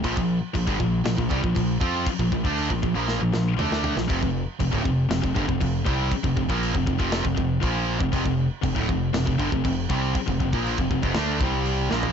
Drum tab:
CC |x---x---x---x---|x---x-----------|x---x---x---x---|x---x---x---x---|
SD |--------o-------|--------o-o--o-o|--------o-------|--------o-------|
T2 |----------------|------------o---|----------------|----------------|
FT |----------------|--------------o-|----------------|----------------|
BD |oo--ooo--oooo-o-|oooo-oo---------|oo--ooo--oooo-o-|oooo-ooo-oo-o--o|

CC |x---x---x---x---|x---x---x---x---|
SD |--------o-------|--------o-----o-|
T2 |----------------|----------------|
FT |----------------|---------------o|
BD |oo--ooo--oooo-o-|oooo-ooo--o-----|